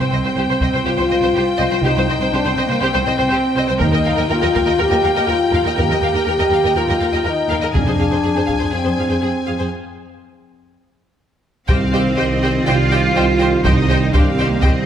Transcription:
Already playing: french horn section C4, violin section G5
0.01 violin section C5
0.12 cello section C2, viola section C5, violin section D#5
0.24 cello section C2, viola section C5, violin section C5
0.36 cello section C2, violin section G4, viola section C5
0.49 cello section C2, viola section C5, violin section C5
0.61 cello section C2, viola section C5, violin section D#5, taiko
0.73 cello section C2, viola section C5, violin section C5
0.84 cello section C2, french horn section F4, violin section G4, viola section C5
0.97 cello section C2, viola section C5, violin section C5
1.10 cello section C2, viola section C5, violin section D#5
1.22 cello section C2, viola section C5, violin section C5
1.35 cello section C2, violin section G4, viola section C5
1.58 cello section C2, viola section C5, violin section D#5
1.70 cello section C2, violin section C5, viola section C5
1.83 double bass section C2, cello section C2, french horn section D#4, violin section G4, viola section C5
1.97 cello section C2, viola section C5, violin section C5
2.09 cello section C2, viola section C5, violin section D#5
2.20 cello section C2, violin section C5, viola section C5
2.33 cello section C2, french horn section D4, violin section G4, viola section C5
2.44 cello section C2, violin section C5, viola section C5
2.50 french horn section C4
2.57 cello section C2, viola section C5, violin section D#5
2.66 french horn section A#3, viola section C5
2.70 cello section C2, violin section C5
2.81 cello section C2, french horn section C4, violin section G4, viola section C5
2.94 cello section C2, viola section C5, violin section C5
3.06 cello section C2, viola section C5, violin section D#5
3.17 cello section C2, viola section C5, violin section C5
3.30 cello section C2, violin section G4, viola section C5
3.56 cello section C2, viola section C5, violin section D#5
3.67 cello section C2, viola section C5, violin section C5
3.78 cello section D#2, double bass section D#2, french horn section D#4, viola section A#4, violin section A#4 G5, taiko
3.92 cello section D#2, viola section A#4, violin section D#5
4.05 cello section D#2, viola section A#4, violin section F5
4.16 cello section D#2, viola section A#4, violin section D#5
4.29 cello section D#2, french horn section F4, viola section A#4, violin section A#4
4.41 cello section D#2, viola section A#4, violin section D#5
4.54 cello section D#2, viola section A#4, violin section F5, taiko
4.66 cello section D#2, viola section A#4, violin section D#5
4.78 cello section D#2, french horn section G4, violin section A#4, viola section A#4
4.90 cello section D#2, viola section A#4, violin section D#5
5.03 cello section D#2, viola section A#4, violin section F5
5.15 cello section D#2, viola section A#4, violin section D#5
5.27 cello section D#2, french horn section F4, viola section A#4, violin section A#4
5.52 cello section D#2, viola section A#4, violin section F5
5.64 cello section D#2, viola section A#4, violin section D#5
5.77 cello section D#2, double bass section D#2, french horn section G4, violin section A#4, viola section A#4
5.89 cello section D#2, viola section A#4, violin section D#5
6.01 cello section D#2, viola section A#4, violin section F5
6.14 cello section D#2, viola section A#4, violin section D#5
6.25 cello section D#2, french horn section G4, viola section A#4, violin section A#4
6.39 cello section D#2, viola section A#4, violin section D#5
6.51 cello section D#2, viola section A#4, violin section F5
6.64 cello section D#2, viola section A#4, violin section D#5
6.76 cello section D#2, french horn section F4, violin section A#4, viola section A#4
6.89 cello section D#2, viola section A#4, violin section D#5
6.99 cello section D#2, viola section A#4, violin section F5
7.12 cello section D#2, viola section A#4, violin section D#5
7.24 cello section D#2, french horn section D#4, violin section A#4, viola section A#4
7.49 cello section D#2, viola section A#4, violin section F5
7.61 cello section D#2, viola section A#4, violin section D#5
7.73 double bass section F1, cello section F2, french horn section D4, violin section G#4 G#5, viola section G#4, taiko
7.86 cello section F2, viola section G#4, violin section C5
7.98 cello section F2, viola section G#4, violin section F5
8.10 cello section F2, viola section G#4, violin section C5
8.23 cello section F2, violin section G#4, viola section G#4
8.36 cello section F2, viola section G#4, violin section C5
8.46 cello section F2, viola section G#4, violin section F5, taiko
8.59 cello section F2, viola section G#4, violin section C5
8.71 cello section F2, french horn section C4, violin section G#4, viola section G#4
8.84 cello section F2, viola section G#4, violin section C5
8.97 cello section F2, viola section G#4, violin section F5
9.09 cello section F2, viola section G#4, violin section C5
9.22 cello section F2, viola section G#4, violin section G#4
9.46 cello section F2, viola section G#4, violin section F5
9.58 cello section F2, viola section G#4, violin section C5
11.68 double bass section C2, tuba C2, timpani C3, trombone section D#3 G3, cello section C4, french horn section C4 G4, viola section G4 C5, violin section D#5 F5 G5, taiko
11.93 viola section G4 C5, violin section D#5 G5
12.17 double bass section C2, tuba C2, viola section G4 C5, violin section D#5 G5
12.42 viola section G4 C5, violin section D#5 G5
12.66 double bass section C2, tuba C2, cello section F4, viola section G4 C5, violin section D5 D#5 G5
12.91 viola section G4 C5, violin section D#5 G5
13.14 tuba C2, double bass section C2, viola section G4 C5, violin section C5 D#5 G5
13.38 viola section G4 C5, violin section D#5 G5
13.64 tuba C2, double bass section C2, cello section D#4, viola section G4 C5, violin section D#5 G5, taiko
13.89 viola section G4 C5, violin section D#5 G5
14.13 tuba C2, double bass section C2, cello section D4, viola section G4 C5, violin section D#5 F5 G5, taiko
14.30 cello section C4
14.38 viola section G4 C5, violin section D#5 G5
14.47 cello section A#3
14.61 tuba C2, double bass section C2, cello section C4, viola section G4 C5, violin section D#5 G5, taiko

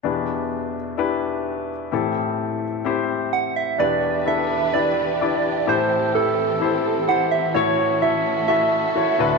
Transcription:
0.03 grand piano E2 B2 D4 E4 G4 B4
0.97 grand piano D4 E4 G4 B4
1.92 grand piano A2 E3 C4 E4 G4 A4
2.85 grand piano C4 E4 G4 C5
3.33 soft synth lead F#5
3.56 soft synth lead E5
3.78 grand piano E2 B2 D4 E4 G4 B4, string section E3 D4 G4 B4, soft synth lead D5
4.25 grand piano D4 E4 G4 A4, soft synth lead E5
4.73 grand piano D4 E4 G4 B4, soft synth lead D5
5.20 grand piano D4 E4 G4 D5
5.67 grand piano A2 E3 E4 G4 A4 C5, string section E3 C4 A4, soft synth lead C5
6.14 grand piano E4 G4 A4 B4, soft synth lead A4
6.60 grand piano E4 G4 A4 C5
7.08 grand piano E4 G4 A4 C5, soft synth lead F#5
7.31 soft synth lead E5
7.54 string section A2 C#4 F#4 A4, grand piano A2 A3 E4 F#4 A4 C#5, soft synth lead C#5
8.01 grand piano E4 F#4 A4 C#5, soft synth lead E5
8.48 grand piano E4 F#4 A4 E5, soft synth lead E5
8.95 grand piano E4 F#4 A4 C#5
9.18 grand piano D2 A2 D4 F#4 A4 B4, string section D3 B3

